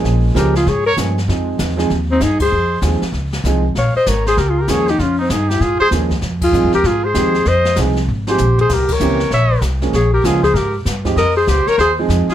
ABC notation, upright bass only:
X:1
M:4/4
L:1/8
Q:"Swing" 1/4=194
K:Fm
V:1 name="Upright bass" clef=bass
B,,,2 D,,2 A,,2 G,,2 | F,,2 =E,,2 _E,,2 G,,2 | F,,2 E,, z D,,2 C,,2 | B,,, z A,,,2 D,,2 E,,2 |
F,,2 G,,2 A,, z E,,2 | F,,2 (3G,, F,, E,, A,,2 E,,2 | F,,2 C,,2 A,,,2 B,,,2 | C,,2 D,,2 B,,,2 C,,2 |
B,,,2 D,,2 A,,2 G,,2 | F,,2 D,, z E,,2 F,, z |]